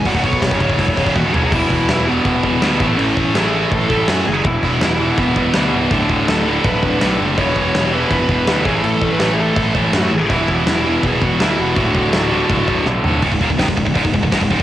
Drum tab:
CC |x-x-x-x-x-x-----|x---x---x---x---|x---x---x---x---|x---x---x---x---|
SD |----o-----------|----o-------o---|----o-------o---|----o-------o---|
T1 |------------o---|----------------|----------------|----------------|
FT |--------------o-|----------------|----------------|----------------|
BD |ooooooooooooo---|o-o-----o-o---o-|--o-----o-o-----|o-o-----o-o-----|

CC |x---x---x---x---|x---x---x---x---|x---x---x---x---|x---x---x---x---|
SD |----o-------o---|----o-------o---|----o-------o---|----o-------o---|
T1 |----------------|----------------|----------------|----------------|
FT |----------------|----------------|----------------|----------------|
BD |o-o-----o-o-----|o-o-----o-o---o-|--o-----o-o-----|o-o-----o-o-----|

CC |x---x---x-------|x-x-x-x-x-x-x-x-|
SD |----o-------o---|----o-------o---|
T1 |----------------|----------------|
FT |--------------o-|----------------|
BD |o-o-----o-o-----|oooooooooooooooo|